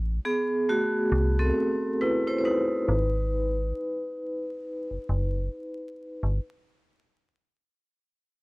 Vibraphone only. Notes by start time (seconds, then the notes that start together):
0.25 B3 G#4
0.69 A3 F#4
1.39 C4 A4
2.01 E4 B4
2.27 E4 C5
2.38 C5
2.45 D#4 B4